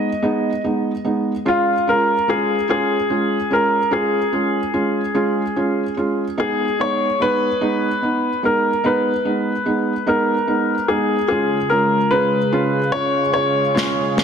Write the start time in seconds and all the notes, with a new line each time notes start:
Already playing: D#5
0.22 G#3 B3 D#4
0.64 G#3 B3 D#4
1.04 G#3 B3 D#4
1.45 G#3 C#4 F4
1.87 G#3 C#4 F4 A#4
2.28 G#3 C#4 F4 G#4
2.69 G#3 C#4 F4 G#4
3.10 G#3 C#4 F4
3.50 G#3 C#4 F4 A#4
3.91 G#3 C#4 F4 G#4
4.32 G#3 C#4 F4
4.74 G#3 C#4 F4
5.15 G#3 C#4 F4
5.56 G#3 C#4 F4
5.97 G#3 C#4 F4
6.37 G#3 B3 D#4 G#4
6.79 G#3 B3 D#4 C#5
7.20 G#3 B3 D#4 B4
7.61 G#3 B3 D#4
8.02 B3 D#4
8.43 G#3 B3 D#4 A#4
8.84 G#3 B3 D#4 B4
9.25 G#3 B3 D#4
9.66 G#3 B3 D#4
10.06 G#3 B3 D#4 A#4
10.47 G#3 B3 D#4
10.88 G#3 B3 D#4 G#4
11.28 C#3 G#3 C#4 F4 G#4
11.70 G#3 C#4 F4 A#4
12.11 G#3 C#4 F4 B4
12.52 G#3 C#4 F4
12.92 G#3 C#4 F4 C#5
13.34 G#3 C#4 F4 C#5
13.75 G#3 C#4 F4, snare
14.17 G#3 C#4 F4, snare